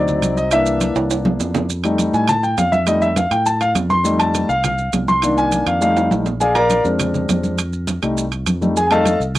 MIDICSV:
0, 0, Header, 1, 4, 480
1, 0, Start_track
1, 0, Tempo, 294406
1, 849, Time_signature, 4, 2, 24, 8
1, 15306, End_track
2, 0, Start_track
2, 0, Title_t, "Grand piano"
2, 0, Program_c, 0, 0
2, 0, Note_on_c, 0, 54, 59
2, 0, Note_on_c, 0, 60, 51
2, 0, Note_on_c, 0, 63, 57
2, 0, Note_on_c, 0, 74, 83
2, 560, Note_off_c, 0, 74, 0
2, 610, Note_on_c, 0, 75, 84
2, 795, Note_off_c, 0, 54, 0
2, 798, Note_off_c, 0, 60, 0
2, 803, Note_off_c, 0, 63, 0
2, 842, Note_off_c, 0, 75, 0
2, 842, Note_on_c, 0, 52, 60
2, 854, Note_on_c, 0, 58, 56
2, 858, Note_on_c, 0, 76, 95
2, 861, Note_on_c, 0, 62, 68
2, 1522, Note_off_c, 0, 76, 0
2, 2696, Note_off_c, 0, 52, 0
2, 2702, Note_off_c, 0, 58, 0
2, 2705, Note_off_c, 0, 62, 0
2, 2997, Note_on_c, 0, 55, 56
2, 3002, Note_on_c, 0, 57, 52
2, 3016, Note_on_c, 0, 63, 65
2, 3487, Note_on_c, 0, 80, 80
2, 3684, Note_off_c, 0, 55, 0
2, 3686, Note_off_c, 0, 57, 0
2, 3694, Note_off_c, 0, 63, 0
2, 3718, Note_off_c, 0, 80, 0
2, 3729, Note_on_c, 0, 81, 95
2, 3959, Note_off_c, 0, 81, 0
2, 3964, Note_on_c, 0, 79, 81
2, 4196, Note_off_c, 0, 79, 0
2, 4201, Note_on_c, 0, 77, 79
2, 4434, Note_on_c, 0, 76, 86
2, 4435, Note_off_c, 0, 77, 0
2, 4671, Note_off_c, 0, 76, 0
2, 4673, Note_on_c, 0, 55, 61
2, 4680, Note_on_c, 0, 57, 56
2, 4684, Note_on_c, 0, 75, 89
2, 4689, Note_on_c, 0, 63, 66
2, 4916, Note_off_c, 0, 75, 0
2, 4918, Note_on_c, 0, 76, 88
2, 4996, Note_off_c, 0, 55, 0
2, 5000, Note_off_c, 0, 57, 0
2, 5005, Note_off_c, 0, 63, 0
2, 5153, Note_off_c, 0, 76, 0
2, 5162, Note_on_c, 0, 77, 74
2, 5395, Note_off_c, 0, 77, 0
2, 5401, Note_on_c, 0, 79, 86
2, 5634, Note_off_c, 0, 79, 0
2, 5641, Note_on_c, 0, 81, 88
2, 5874, Note_off_c, 0, 81, 0
2, 5881, Note_on_c, 0, 77, 89
2, 6025, Note_off_c, 0, 77, 0
2, 6358, Note_on_c, 0, 84, 102
2, 6582, Note_on_c, 0, 55, 59
2, 6593, Note_on_c, 0, 57, 54
2, 6600, Note_on_c, 0, 63, 66
2, 6806, Note_off_c, 0, 84, 0
2, 6836, Note_on_c, 0, 81, 88
2, 7276, Note_off_c, 0, 55, 0
2, 7282, Note_off_c, 0, 57, 0
2, 7285, Note_off_c, 0, 63, 0
2, 7286, Note_off_c, 0, 81, 0
2, 7320, Note_on_c, 0, 77, 90
2, 7542, Note_off_c, 0, 77, 0
2, 7566, Note_on_c, 0, 77, 81
2, 8011, Note_off_c, 0, 77, 0
2, 8286, Note_on_c, 0, 84, 105
2, 8519, Note_on_c, 0, 51, 64
2, 8527, Note_on_c, 0, 58, 52
2, 8537, Note_on_c, 0, 62, 64
2, 8732, Note_off_c, 0, 84, 0
2, 8766, Note_on_c, 0, 80, 92
2, 9212, Note_off_c, 0, 80, 0
2, 9246, Note_on_c, 0, 77, 73
2, 9434, Note_off_c, 0, 51, 0
2, 9438, Note_off_c, 0, 58, 0
2, 9444, Note_off_c, 0, 62, 0
2, 9460, Note_off_c, 0, 77, 0
2, 9472, Note_on_c, 0, 55, 56
2, 9482, Note_on_c, 0, 57, 54
2, 9485, Note_on_c, 0, 77, 83
2, 9490, Note_on_c, 0, 63, 61
2, 9932, Note_off_c, 0, 77, 0
2, 10163, Note_off_c, 0, 55, 0
2, 10168, Note_off_c, 0, 57, 0
2, 10172, Note_off_c, 0, 63, 0
2, 10440, Note_on_c, 0, 80, 80
2, 10450, Note_on_c, 0, 68, 69
2, 10451, Note_on_c, 0, 74, 67
2, 10453, Note_on_c, 0, 77, 67
2, 10663, Note_off_c, 0, 74, 0
2, 10664, Note_off_c, 0, 77, 0
2, 10676, Note_off_c, 0, 80, 0
2, 10679, Note_on_c, 0, 82, 104
2, 10681, Note_off_c, 0, 68, 0
2, 10686, Note_on_c, 0, 70, 89
2, 10688, Note_on_c, 0, 74, 89
2, 10688, Note_on_c, 0, 77, 86
2, 11129, Note_off_c, 0, 82, 0
2, 11134, Note_off_c, 0, 70, 0
2, 11134, Note_off_c, 0, 74, 0
2, 11135, Note_off_c, 0, 77, 0
2, 11151, Note_on_c, 0, 56, 45
2, 11163, Note_on_c, 0, 60, 43
2, 11174, Note_on_c, 0, 62, 52
2, 12300, Note_off_c, 0, 56, 0
2, 12307, Note_off_c, 0, 60, 0
2, 12312, Note_off_c, 0, 62, 0
2, 13082, Note_on_c, 0, 55, 48
2, 13091, Note_on_c, 0, 57, 48
2, 13099, Note_on_c, 0, 63, 56
2, 13405, Note_off_c, 0, 55, 0
2, 13410, Note_off_c, 0, 57, 0
2, 13414, Note_off_c, 0, 63, 0
2, 14044, Note_on_c, 0, 55, 49
2, 14051, Note_on_c, 0, 57, 45
2, 14061, Note_on_c, 0, 63, 57
2, 14264, Note_off_c, 0, 55, 0
2, 14267, Note_off_c, 0, 57, 0
2, 14272, Note_off_c, 0, 63, 0
2, 14298, Note_on_c, 0, 80, 83
2, 14300, Note_on_c, 0, 68, 65
2, 14433, Note_off_c, 0, 80, 0
2, 14458, Note_on_c, 0, 80, 69
2, 14495, Note_off_c, 0, 80, 0
2, 14518, Note_on_c, 0, 55, 60
2, 14525, Note_on_c, 0, 57, 53
2, 14529, Note_off_c, 0, 68, 0
2, 14531, Note_on_c, 0, 81, 100
2, 14535, Note_on_c, 0, 63, 66
2, 14536, Note_on_c, 0, 69, 85
2, 14536, Note_on_c, 0, 75, 79
2, 14537, Note_on_c, 0, 77, 84
2, 14844, Note_off_c, 0, 55, 0
2, 14847, Note_off_c, 0, 57, 0
2, 14852, Note_off_c, 0, 63, 0
2, 14978, Note_off_c, 0, 81, 0
2, 14980, Note_off_c, 0, 69, 0
2, 14981, Note_off_c, 0, 75, 0
2, 14981, Note_off_c, 0, 77, 0
2, 15306, End_track
3, 0, Start_track
3, 0, Title_t, "Fingered electric bass"
3, 0, Program_c, 1, 33
3, 0, Note_on_c, 1, 38, 95
3, 314, Note_off_c, 1, 38, 0
3, 353, Note_on_c, 1, 36, 90
3, 1470, Note_off_c, 1, 36, 0
3, 1559, Note_on_c, 1, 36, 91
3, 2231, Note_off_c, 1, 36, 0
3, 2280, Note_on_c, 1, 41, 87
3, 3392, Note_off_c, 1, 41, 0
3, 3477, Note_on_c, 1, 45, 97
3, 4149, Note_off_c, 1, 45, 0
3, 4197, Note_on_c, 1, 41, 83
3, 5310, Note_off_c, 1, 41, 0
3, 5393, Note_on_c, 1, 45, 88
3, 6067, Note_off_c, 1, 45, 0
3, 6108, Note_on_c, 1, 41, 93
3, 7226, Note_off_c, 1, 41, 0
3, 7317, Note_on_c, 1, 36, 84
3, 7990, Note_off_c, 1, 36, 0
3, 8037, Note_on_c, 1, 36, 88
3, 9152, Note_off_c, 1, 36, 0
3, 9236, Note_on_c, 1, 41, 95
3, 9910, Note_off_c, 1, 41, 0
3, 9963, Note_on_c, 1, 34, 85
3, 11077, Note_off_c, 1, 34, 0
3, 11164, Note_on_c, 1, 41, 95
3, 11836, Note_off_c, 1, 41, 0
3, 11885, Note_on_c, 1, 41, 80
3, 12999, Note_off_c, 1, 41, 0
3, 13087, Note_on_c, 1, 36, 93
3, 13759, Note_off_c, 1, 36, 0
3, 13802, Note_on_c, 1, 41, 94
3, 14918, Note_off_c, 1, 41, 0
3, 15000, Note_on_c, 1, 36, 86
3, 15306, Note_off_c, 1, 36, 0
3, 15306, End_track
4, 0, Start_track
4, 0, Title_t, "Drums"
4, 125, Note_on_c, 9, 63, 36
4, 125, Note_on_c, 9, 64, 70
4, 131, Note_on_c, 9, 70, 59
4, 288, Note_off_c, 9, 63, 0
4, 288, Note_off_c, 9, 64, 0
4, 294, Note_off_c, 9, 70, 0
4, 365, Note_on_c, 9, 65, 71
4, 372, Note_on_c, 9, 63, 83
4, 372, Note_on_c, 9, 70, 73
4, 528, Note_off_c, 9, 65, 0
4, 535, Note_off_c, 9, 63, 0
4, 535, Note_off_c, 9, 70, 0
4, 609, Note_on_c, 9, 70, 30
4, 772, Note_off_c, 9, 70, 0
4, 838, Note_on_c, 9, 65, 101
4, 838, Note_on_c, 9, 70, 79
4, 847, Note_on_c, 9, 63, 34
4, 1001, Note_off_c, 9, 65, 0
4, 1001, Note_off_c, 9, 70, 0
4, 1010, Note_off_c, 9, 63, 0
4, 1076, Note_on_c, 9, 70, 62
4, 1083, Note_on_c, 9, 63, 37
4, 1239, Note_off_c, 9, 70, 0
4, 1246, Note_off_c, 9, 63, 0
4, 1317, Note_on_c, 9, 70, 72
4, 1320, Note_on_c, 9, 63, 89
4, 1323, Note_on_c, 9, 65, 63
4, 1480, Note_off_c, 9, 70, 0
4, 1484, Note_off_c, 9, 63, 0
4, 1486, Note_off_c, 9, 65, 0
4, 1559, Note_on_c, 9, 70, 29
4, 1563, Note_on_c, 9, 65, 107
4, 1722, Note_off_c, 9, 70, 0
4, 1726, Note_off_c, 9, 65, 0
4, 1800, Note_on_c, 9, 70, 73
4, 1805, Note_on_c, 9, 65, 91
4, 1807, Note_on_c, 9, 63, 34
4, 1963, Note_off_c, 9, 70, 0
4, 1968, Note_off_c, 9, 65, 0
4, 1970, Note_off_c, 9, 63, 0
4, 2038, Note_on_c, 9, 63, 106
4, 2044, Note_on_c, 9, 66, 84
4, 2201, Note_off_c, 9, 63, 0
4, 2207, Note_off_c, 9, 66, 0
4, 2281, Note_on_c, 9, 66, 74
4, 2283, Note_on_c, 9, 70, 66
4, 2444, Note_off_c, 9, 66, 0
4, 2446, Note_off_c, 9, 70, 0
4, 2517, Note_on_c, 9, 66, 96
4, 2521, Note_on_c, 9, 64, 84
4, 2528, Note_on_c, 9, 70, 29
4, 2680, Note_off_c, 9, 66, 0
4, 2684, Note_off_c, 9, 64, 0
4, 2691, Note_off_c, 9, 70, 0
4, 2759, Note_on_c, 9, 63, 32
4, 2765, Note_on_c, 9, 70, 69
4, 2922, Note_off_c, 9, 63, 0
4, 2928, Note_off_c, 9, 70, 0
4, 2992, Note_on_c, 9, 65, 90
4, 3002, Note_on_c, 9, 63, 37
4, 3013, Note_on_c, 9, 70, 31
4, 3155, Note_off_c, 9, 65, 0
4, 3165, Note_off_c, 9, 63, 0
4, 3177, Note_off_c, 9, 70, 0
4, 3232, Note_on_c, 9, 65, 64
4, 3244, Note_on_c, 9, 63, 82
4, 3245, Note_on_c, 9, 70, 65
4, 3395, Note_off_c, 9, 65, 0
4, 3407, Note_off_c, 9, 63, 0
4, 3408, Note_off_c, 9, 70, 0
4, 3487, Note_on_c, 9, 70, 30
4, 3488, Note_on_c, 9, 63, 32
4, 3650, Note_off_c, 9, 70, 0
4, 3651, Note_off_c, 9, 63, 0
4, 3708, Note_on_c, 9, 65, 98
4, 3724, Note_on_c, 9, 70, 64
4, 3732, Note_on_c, 9, 63, 35
4, 3732, Note_on_c, 9, 64, 80
4, 3871, Note_off_c, 9, 65, 0
4, 3887, Note_off_c, 9, 70, 0
4, 3895, Note_off_c, 9, 63, 0
4, 3895, Note_off_c, 9, 64, 0
4, 3966, Note_on_c, 9, 63, 35
4, 3967, Note_on_c, 9, 70, 30
4, 4129, Note_off_c, 9, 63, 0
4, 4130, Note_off_c, 9, 70, 0
4, 4201, Note_on_c, 9, 65, 72
4, 4201, Note_on_c, 9, 66, 77
4, 4202, Note_on_c, 9, 70, 67
4, 4205, Note_on_c, 9, 63, 78
4, 4364, Note_off_c, 9, 65, 0
4, 4364, Note_off_c, 9, 66, 0
4, 4365, Note_off_c, 9, 70, 0
4, 4368, Note_off_c, 9, 63, 0
4, 4443, Note_on_c, 9, 63, 80
4, 4445, Note_on_c, 9, 70, 29
4, 4606, Note_off_c, 9, 63, 0
4, 4608, Note_off_c, 9, 70, 0
4, 4674, Note_on_c, 9, 65, 93
4, 4677, Note_on_c, 9, 70, 73
4, 4684, Note_on_c, 9, 63, 33
4, 4837, Note_off_c, 9, 65, 0
4, 4840, Note_off_c, 9, 70, 0
4, 4847, Note_off_c, 9, 63, 0
4, 4920, Note_on_c, 9, 63, 38
4, 4920, Note_on_c, 9, 70, 29
4, 5083, Note_off_c, 9, 63, 0
4, 5083, Note_off_c, 9, 70, 0
4, 5155, Note_on_c, 9, 65, 68
4, 5159, Note_on_c, 9, 63, 91
4, 5166, Note_on_c, 9, 70, 68
4, 5318, Note_off_c, 9, 65, 0
4, 5322, Note_off_c, 9, 63, 0
4, 5329, Note_off_c, 9, 70, 0
4, 5399, Note_on_c, 9, 65, 90
4, 5401, Note_on_c, 9, 63, 30
4, 5401, Note_on_c, 9, 70, 29
4, 5562, Note_off_c, 9, 65, 0
4, 5564, Note_off_c, 9, 63, 0
4, 5564, Note_off_c, 9, 70, 0
4, 5641, Note_on_c, 9, 70, 71
4, 5643, Note_on_c, 9, 63, 32
4, 5804, Note_off_c, 9, 70, 0
4, 5806, Note_off_c, 9, 63, 0
4, 5873, Note_on_c, 9, 63, 32
4, 5880, Note_on_c, 9, 65, 76
4, 5883, Note_on_c, 9, 70, 27
4, 6036, Note_off_c, 9, 63, 0
4, 6043, Note_off_c, 9, 65, 0
4, 6047, Note_off_c, 9, 70, 0
4, 6118, Note_on_c, 9, 65, 93
4, 6118, Note_on_c, 9, 66, 75
4, 6119, Note_on_c, 9, 70, 69
4, 6120, Note_on_c, 9, 63, 84
4, 6281, Note_off_c, 9, 65, 0
4, 6281, Note_off_c, 9, 66, 0
4, 6282, Note_off_c, 9, 70, 0
4, 6283, Note_off_c, 9, 63, 0
4, 6357, Note_on_c, 9, 70, 28
4, 6361, Note_on_c, 9, 63, 77
4, 6520, Note_off_c, 9, 70, 0
4, 6524, Note_off_c, 9, 63, 0
4, 6600, Note_on_c, 9, 70, 74
4, 6606, Note_on_c, 9, 63, 35
4, 6763, Note_off_c, 9, 70, 0
4, 6769, Note_off_c, 9, 63, 0
4, 6841, Note_on_c, 9, 63, 35
4, 6842, Note_on_c, 9, 65, 93
4, 6842, Note_on_c, 9, 70, 30
4, 7005, Note_off_c, 9, 63, 0
4, 7005, Note_off_c, 9, 65, 0
4, 7005, Note_off_c, 9, 70, 0
4, 7085, Note_on_c, 9, 70, 71
4, 7087, Note_on_c, 9, 65, 69
4, 7088, Note_on_c, 9, 63, 84
4, 7248, Note_off_c, 9, 70, 0
4, 7250, Note_off_c, 9, 65, 0
4, 7252, Note_off_c, 9, 63, 0
4, 7327, Note_on_c, 9, 70, 29
4, 7328, Note_on_c, 9, 63, 31
4, 7490, Note_off_c, 9, 70, 0
4, 7492, Note_off_c, 9, 63, 0
4, 7561, Note_on_c, 9, 65, 92
4, 7564, Note_on_c, 9, 70, 64
4, 7570, Note_on_c, 9, 63, 32
4, 7570, Note_on_c, 9, 64, 78
4, 7724, Note_off_c, 9, 65, 0
4, 7727, Note_off_c, 9, 70, 0
4, 7733, Note_off_c, 9, 63, 0
4, 7733, Note_off_c, 9, 64, 0
4, 7797, Note_on_c, 9, 70, 26
4, 7811, Note_on_c, 9, 63, 34
4, 7960, Note_off_c, 9, 70, 0
4, 7974, Note_off_c, 9, 63, 0
4, 8037, Note_on_c, 9, 70, 78
4, 8040, Note_on_c, 9, 65, 71
4, 8040, Note_on_c, 9, 66, 78
4, 8048, Note_on_c, 9, 63, 82
4, 8200, Note_off_c, 9, 70, 0
4, 8203, Note_off_c, 9, 65, 0
4, 8203, Note_off_c, 9, 66, 0
4, 8212, Note_off_c, 9, 63, 0
4, 8283, Note_on_c, 9, 70, 31
4, 8286, Note_on_c, 9, 63, 90
4, 8446, Note_off_c, 9, 70, 0
4, 8449, Note_off_c, 9, 63, 0
4, 8514, Note_on_c, 9, 65, 92
4, 8528, Note_on_c, 9, 70, 74
4, 8532, Note_on_c, 9, 63, 32
4, 8677, Note_off_c, 9, 65, 0
4, 8691, Note_off_c, 9, 70, 0
4, 8695, Note_off_c, 9, 63, 0
4, 8766, Note_on_c, 9, 63, 36
4, 8766, Note_on_c, 9, 70, 31
4, 8929, Note_off_c, 9, 63, 0
4, 8929, Note_off_c, 9, 70, 0
4, 8998, Note_on_c, 9, 70, 70
4, 9002, Note_on_c, 9, 65, 65
4, 9004, Note_on_c, 9, 63, 85
4, 9161, Note_off_c, 9, 70, 0
4, 9165, Note_off_c, 9, 65, 0
4, 9167, Note_off_c, 9, 63, 0
4, 9237, Note_on_c, 9, 65, 100
4, 9239, Note_on_c, 9, 70, 29
4, 9245, Note_on_c, 9, 63, 32
4, 9400, Note_off_c, 9, 65, 0
4, 9402, Note_off_c, 9, 70, 0
4, 9408, Note_off_c, 9, 63, 0
4, 9481, Note_on_c, 9, 63, 34
4, 9483, Note_on_c, 9, 70, 66
4, 9644, Note_off_c, 9, 63, 0
4, 9646, Note_off_c, 9, 70, 0
4, 9720, Note_on_c, 9, 63, 33
4, 9727, Note_on_c, 9, 65, 85
4, 9727, Note_on_c, 9, 70, 29
4, 9883, Note_off_c, 9, 63, 0
4, 9890, Note_off_c, 9, 65, 0
4, 9890, Note_off_c, 9, 70, 0
4, 9957, Note_on_c, 9, 63, 88
4, 9962, Note_on_c, 9, 65, 83
4, 9973, Note_on_c, 9, 70, 66
4, 10120, Note_off_c, 9, 63, 0
4, 10125, Note_off_c, 9, 65, 0
4, 10136, Note_off_c, 9, 70, 0
4, 10203, Note_on_c, 9, 66, 81
4, 10203, Note_on_c, 9, 70, 28
4, 10366, Note_off_c, 9, 66, 0
4, 10366, Note_off_c, 9, 70, 0
4, 10445, Note_on_c, 9, 63, 33
4, 10447, Note_on_c, 9, 70, 70
4, 10608, Note_off_c, 9, 63, 0
4, 10610, Note_off_c, 9, 70, 0
4, 10682, Note_on_c, 9, 65, 85
4, 10682, Note_on_c, 9, 70, 31
4, 10683, Note_on_c, 9, 63, 35
4, 10845, Note_off_c, 9, 65, 0
4, 10845, Note_off_c, 9, 70, 0
4, 10846, Note_off_c, 9, 63, 0
4, 10920, Note_on_c, 9, 63, 82
4, 10923, Note_on_c, 9, 70, 69
4, 10931, Note_on_c, 9, 65, 72
4, 11083, Note_off_c, 9, 63, 0
4, 11086, Note_off_c, 9, 70, 0
4, 11094, Note_off_c, 9, 65, 0
4, 11168, Note_on_c, 9, 70, 29
4, 11172, Note_on_c, 9, 63, 32
4, 11331, Note_off_c, 9, 70, 0
4, 11335, Note_off_c, 9, 63, 0
4, 11405, Note_on_c, 9, 65, 99
4, 11405, Note_on_c, 9, 70, 71
4, 11407, Note_on_c, 9, 63, 34
4, 11407, Note_on_c, 9, 64, 80
4, 11568, Note_off_c, 9, 65, 0
4, 11568, Note_off_c, 9, 70, 0
4, 11570, Note_off_c, 9, 63, 0
4, 11570, Note_off_c, 9, 64, 0
4, 11647, Note_on_c, 9, 63, 36
4, 11647, Note_on_c, 9, 64, 72
4, 11647, Note_on_c, 9, 70, 28
4, 11810, Note_off_c, 9, 63, 0
4, 11810, Note_off_c, 9, 64, 0
4, 11810, Note_off_c, 9, 70, 0
4, 11885, Note_on_c, 9, 63, 95
4, 11885, Note_on_c, 9, 65, 74
4, 11885, Note_on_c, 9, 66, 72
4, 11889, Note_on_c, 9, 70, 74
4, 12048, Note_off_c, 9, 63, 0
4, 12049, Note_off_c, 9, 65, 0
4, 12049, Note_off_c, 9, 66, 0
4, 12052, Note_off_c, 9, 70, 0
4, 12122, Note_on_c, 9, 63, 81
4, 12125, Note_on_c, 9, 70, 28
4, 12285, Note_off_c, 9, 63, 0
4, 12288, Note_off_c, 9, 70, 0
4, 12362, Note_on_c, 9, 70, 71
4, 12365, Note_on_c, 9, 63, 36
4, 12367, Note_on_c, 9, 65, 101
4, 12525, Note_off_c, 9, 70, 0
4, 12528, Note_off_c, 9, 63, 0
4, 12530, Note_off_c, 9, 65, 0
4, 12598, Note_on_c, 9, 63, 34
4, 12602, Note_on_c, 9, 70, 32
4, 12761, Note_off_c, 9, 63, 0
4, 12765, Note_off_c, 9, 70, 0
4, 12838, Note_on_c, 9, 63, 93
4, 12846, Note_on_c, 9, 70, 65
4, 12847, Note_on_c, 9, 65, 63
4, 13001, Note_off_c, 9, 63, 0
4, 13009, Note_off_c, 9, 70, 0
4, 13010, Note_off_c, 9, 65, 0
4, 13086, Note_on_c, 9, 63, 32
4, 13086, Note_on_c, 9, 65, 96
4, 13086, Note_on_c, 9, 70, 30
4, 13249, Note_off_c, 9, 63, 0
4, 13249, Note_off_c, 9, 65, 0
4, 13249, Note_off_c, 9, 70, 0
4, 13328, Note_on_c, 9, 63, 33
4, 13329, Note_on_c, 9, 70, 75
4, 13491, Note_off_c, 9, 63, 0
4, 13492, Note_off_c, 9, 70, 0
4, 13562, Note_on_c, 9, 65, 74
4, 13563, Note_on_c, 9, 70, 29
4, 13565, Note_on_c, 9, 63, 31
4, 13725, Note_off_c, 9, 65, 0
4, 13726, Note_off_c, 9, 70, 0
4, 13728, Note_off_c, 9, 63, 0
4, 13800, Note_on_c, 9, 65, 100
4, 13803, Note_on_c, 9, 70, 69
4, 13810, Note_on_c, 9, 63, 85
4, 13963, Note_off_c, 9, 65, 0
4, 13966, Note_off_c, 9, 70, 0
4, 13973, Note_off_c, 9, 63, 0
4, 14052, Note_on_c, 9, 63, 73
4, 14054, Note_on_c, 9, 70, 31
4, 14215, Note_off_c, 9, 63, 0
4, 14217, Note_off_c, 9, 70, 0
4, 14287, Note_on_c, 9, 63, 33
4, 14292, Note_on_c, 9, 70, 81
4, 14450, Note_off_c, 9, 63, 0
4, 14455, Note_off_c, 9, 70, 0
4, 14520, Note_on_c, 9, 65, 87
4, 14529, Note_on_c, 9, 63, 33
4, 14539, Note_on_c, 9, 70, 30
4, 14683, Note_off_c, 9, 65, 0
4, 14692, Note_off_c, 9, 63, 0
4, 14702, Note_off_c, 9, 70, 0
4, 14761, Note_on_c, 9, 65, 68
4, 14763, Note_on_c, 9, 63, 88
4, 14774, Note_on_c, 9, 70, 70
4, 14924, Note_off_c, 9, 65, 0
4, 14926, Note_off_c, 9, 63, 0
4, 14937, Note_off_c, 9, 70, 0
4, 15004, Note_on_c, 9, 63, 30
4, 15017, Note_on_c, 9, 70, 31
4, 15167, Note_off_c, 9, 63, 0
4, 15180, Note_off_c, 9, 70, 0
4, 15241, Note_on_c, 9, 63, 37
4, 15241, Note_on_c, 9, 64, 80
4, 15249, Note_on_c, 9, 65, 97
4, 15249, Note_on_c, 9, 70, 70
4, 15306, Note_off_c, 9, 63, 0
4, 15306, Note_off_c, 9, 64, 0
4, 15306, Note_off_c, 9, 65, 0
4, 15306, Note_off_c, 9, 70, 0
4, 15306, End_track
0, 0, End_of_file